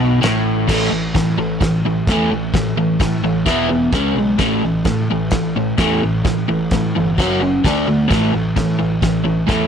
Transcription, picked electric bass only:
0.00 0.19 B1 medium
0.24 0.66 A1 loud
0.69 0.89 A1 medium
0.91 1.11 A1 loud
1.16 1.36 A2 medium
1.37 1.58 A1 medium
1.62 2.02 A1 medium
2.09 2.28 E2 loud
2.31 2.51 A1 medium
2.55 2.75 A1 medium
2.76 2.97 A1 medium
3.01 3.21 A2 medium
3.22 3.43 A1 medium
3.47 3.87 E1 medium
3.93 4.14 C#2 loud
4.15 4.36 B1 medium
4.40 4.60 A1 medium
4.63 4.83 A1 loud
4.86 5.06 A2 medium
5.11 5.30 A1 medium
5.32 5.72 A1 medium
5.79 5.99 E2 medium
6.04 6.24 A1 medium
6.25 6.45 A1 medium
6.51 6.70 A1 medium
6.72 6.92 A2 medium
6.97 7.19 G1 medium
7.19 7.59 F#1 medium
7.65 7.85 D2 medium
7.88 8.08 D2 medium
8.12 8.31 A1 medium
8.35 8.55 A1 medium
8.57 8.77 A2 medium
8.81 9.01 A1 medium
9.03 9.43 A1 medium
9.49 9.67 E2 medium

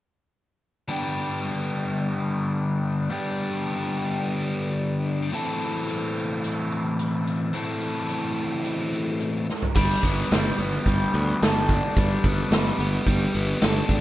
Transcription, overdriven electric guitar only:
0.88 3.09 G2 medium
0.88 3.09 D3 medium
0.88 3.09 G3 medium
0.88 3.11 B3 medium
0.88 3.10 D4 medium
0.88 3.10 G4 medium
3.10 5.31 G2 medium
3.10 5.31 D3 medium
3.10 5.31 G3 medium
3.10 5.33 B3 medium
3.10 5.32 D4 medium
3.10 5.32 G4 medium
5.32 7.52 A2 medium
5.32 7.53 E3 medium
5.32 7.53 C4 medium
5.32 7.53 E4 medium
5.32 7.55 A4 medium
7.53 9.46 A2 medium
7.53 9.47 E3 medium
7.53 9.47 C4 medium
7.53 9.47 E4 medium
7.53 9.47 A4 medium
9.76 10.30 G3 medium
10.04 10.58 B3 medium
10.31 10.85 G3 medium
10.58 11.14 B3 medium
10.86 11.96 G3 medium
11.14 12.25 B3 medium
11.42 12.83 A4 medium
11.70 13.08 D4 medium
11.97 12.52 G3 medium
12.25 12.79 B3 medium
12.53 13.06 G3 medium
12.80 13.34 B3 medium
13.07 14.01 G3 medium
13.34 14.01 B3 medium
13.62 14.01 A4 medium
13.89 14.01 D4 medium

